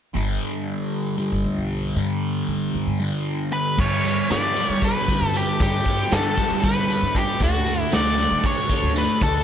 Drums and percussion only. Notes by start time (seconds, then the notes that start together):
3.79 kick, crash
4.05 closed hi-hat
4.30 snare, closed hi-hat
4.56 closed hi-hat
4.82 kick, closed hi-hat
5.08 kick, closed hi-hat
5.34 closed hi-hat
5.60 kick, closed hi-hat
5.86 kick, closed hi-hat
6.11 snare, closed hi-hat
6.38 kick, snare, closed hi-hat
6.64 kick, closed hi-hat
6.90 closed hi-hat
7.15 kick, closed hi-hat
7.40 kick, closed hi-hat
7.66 closed hi-hat
7.92 snare, closed hi-hat
8.18 closed hi-hat
8.43 kick, closed hi-hat
8.69 kick, closed hi-hat
8.96 closed hi-hat
9.21 kick, closed hi-hat